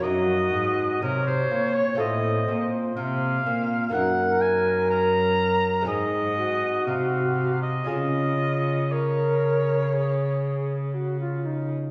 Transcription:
<<
  \new Staff \with { instrumentName = "Oboe" } { \time 4/4 \key f \phrygian \tempo 4 = 61 ees''4 bes'16 c''8 des''16 ees''8. r16 f''4 | \key des \major ges''8 aes''8 bes''4 ees''4 f''8. ees''16 | ees''4 des''2 r4 | }
  \new Staff \with { instrumentName = "Flute" } { \time 4/4 \key f \phrygian ges'4 des''4 c''4. r8 | \key des \major bes'2 aes'8 ges'4. | f'4 bes'4 aes'4 ges'16 f'16 ees'8 | }
  \new Staff \with { instrumentName = "Lute" } { \time 4/4 \key f \phrygian <bes ees' bes'>2 <c' f' a'>2 | \key des \major <bes ees' bes'>2 <aes c' ees' aes'>2 | <des' f' aes'>1 | }
  \new Staff \with { instrumentName = "Lute" } { \clef bass \time 4/4 \key f \phrygian ges,8 aes,8 c8 bes,8 a,8 bes,8 c8 bes,8 | \key des \major ges,2 aes,4 c4 | des1 | }
  \new Staff \with { instrumentName = "Cello" } { \clef bass \time 4/4 \key f \phrygian ges,8 aes,8 c8 bes,8 a,8 bes,8 c8 bes,8 | \key des \major ges,2 aes,4 c4 | des1 | }
>>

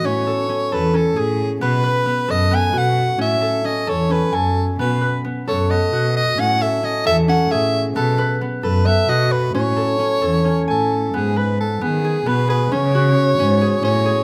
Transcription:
<<
  \new Staff \with { instrumentName = "Soprano saxophone" } { \time 7/8 \key a \lydian \tempo 4 = 133 cis''4. b'8 a'8 gis'8. r16 | b'4. dis''8 gis''8 fis''4 | e''4 dis''8 cis''8 b'8 a'8. r16 | b'4 r8 cis''8 dis''4 dis''8 |
fis''8 e''8 dis''8 e''8 fis''8 e''8. r16 | a'4 r8 b'8 e''8 dis''8 b'8 | cis''2~ cis''8 a'4 | gis'8 b'8 a'8 gis'4 b'8 b'8 |
cis''2~ cis''8 cis''4 | }
  \new Staff \with { instrumentName = "Harp" } { \time 7/8 \key a \lydian cis'8 a'8 cis'8 a'8 cis'8 gis'4 | b8 b'8 b8 a'8 b8 fis'4 | cis'8 a'8 cis'8 a'8 cis'8 gis''4 | b8 b'8 b8 a'8 b8 fis'4 |
cis'8 a'8 cis'8 a'8 cis'8 gis'4 | b8 b'8 b8 a'8 b8 fis'4 | cis'8 a'8 cis'8 a'8 cis'8 gis''4 | b8 b'4 b8 gis'8 b8 gis'8 |
cis'8 fis'4 cis'8 gis'8 cis'8 gis'8 | }
  \new Staff \with { instrumentName = "Cello" } { \clef bass \time 7/8 \key a \lydian a,8 r4 e,4 a,4 | b,8 r4 fis,4 b,4 | a,8 r4 e,4 fis,4 | b,8 r4 fis,4 b,4 |
a,8 r4 e,4 a,4 | b,8 r4 fis,4 b,4 | a,8 r4 e,4 a,4 | gis,4. dis4 b,4 |
cis4. gis,4 a,4 | }
>>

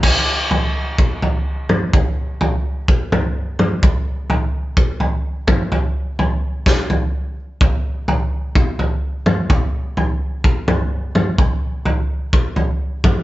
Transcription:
\new DrumStaff \with { instrumentName = "Drums" } \drummode { \time 4/4 \tempo 4 = 127 <cymc bd tomfh>4 tomfh4 bd8 tomfh8 r8 toml8 | <bd tomfh>4 tomfh4 bd8 <tomfh toml>8 r8 toml8 | <bd tomfh>4 tomfh4 bd8 tomfh8 r8 <bd toml>8 | tomfh4 tomfh4 <bd sn>8 tomfh8 r4 |
<bd tomfh>4 tomfh4 bd8 tomfh8 r8 toml8 | <bd tomfh>4 tomfh4 bd8 <tomfh toml>8 r8 toml8 | <bd tomfh>4 tomfh4 bd8 tomfh8 r8 <bd toml>8 | }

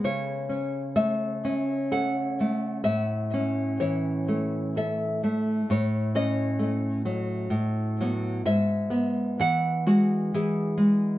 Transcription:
\new Staff \with { instrumentName = "Nylon-string guitar" } { \time 3/4 \key a \major \tempo 4 = 64 << { cis''4 e''4 fis''4 | e''4 cis''4 e''8 r8 | \key e \major cis''8 dis''2~ dis''8 | e''4 fis''8 fis'8 gis'4 | } \\ { cis8 cis'8 a8 cis'8 a'8 a8 | a,8 cis'8 e8 a8 a'8 a8 | a,8 cis'8 a8 fis8 a,8 <fis b>8 | gis,8 b8 e8 gis8 e8 gis8 | } >> }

